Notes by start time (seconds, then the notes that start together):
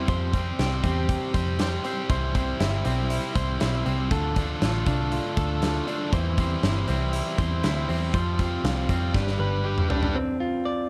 Already playing: C4 E4
0.08 F2 F3 G3 C4 G4 C5, kick, closed hi-hat
0.33 G3 C4 G4 C5, kick, closed hi-hat
0.59 C2 G4, snare, closed hi-hat
0.83 E2 G3 C4 G4 C5, kick, closed hi-hat
1.09 G4, kick, closed hi-hat
1.34 F2 G3 C4 G4 C5, kick, closed hi-hat
1.59 G3 C4 G4 C5, snare, closed hi-hat
1.84 G3 C4 G4 C5, closed hi-hat
2.09 C2 C3 E3 G3 C4 E4 C5, kick, closed hi-hat
2.34 G3 C4 E4 C5, kick, closed hi-hat
2.60 G1 E4, snare, closed hi-hat
2.84 B1 G3 C4 E4 C5, closed hi-hat
3.10 E4, closed hi-hat
3.35 C2 G3 C4 E4 C5, kick, closed hi-hat
3.60 B1 G3 C4 E4 C5, snare, closed hi-hat
3.85 C2 G3 C4 E4 C5, closed hi-hat
4.10 D2 D3 A3 D4 F4 A4, kick, closed hi-hat
4.36 A3 D4 F4 A4, kick, closed hi-hat
4.62 A1 F4, snare, closed hi-hat
4.86 C2 A3 D4 F4 A4, kick, closed hi-hat
5.12 F4, closed hi-hat
5.36 D2 A3 D4 F4 A4, kick, closed hi-hat
5.62 A3 D4 F4 A4, snare, closed hi-hat
5.87 A3 D4 F4 A4, closed hi-hat
6.12 E2 E3 G3 C4 E4 C5, kick, closed hi-hat
6.37 G3 C4 E4 C5, kick, closed hi-hat
6.63 G1 E4, snare, closed hi-hat
6.87 C2 G3 C4 E4 C5, closed hi-hat
7.13 E4, closed hi-hat
7.38 E2 G3 C4 E4 C5, kick, closed hi-hat
7.63 D2 G3 C4 E4 C5, snare, closed hi-hat
7.88 E2 G3 C4 E4 C5, open hi-hat
8.13 F2 F3 G3 C4 F4 C5, kick, closed hi-hat
8.38 G3 C4 F4 C5, kick, closed hi-hat
8.64 C2 F4, snare, closed hi-hat
8.89 F2 G3 C4 F4 C5, kick, closed hi-hat
9.14 G1 G3 D4 G4 B4, kick, snare
9.27 snare
9.39 G1 G3 D4 G4 B4
9.64 G3 D4 G4 B4
9.78 mid tom
9.89 G3 D4 G4 B4, floor tom
10.03 floor tom
10.15 C4
10.40 F4
10.65 D5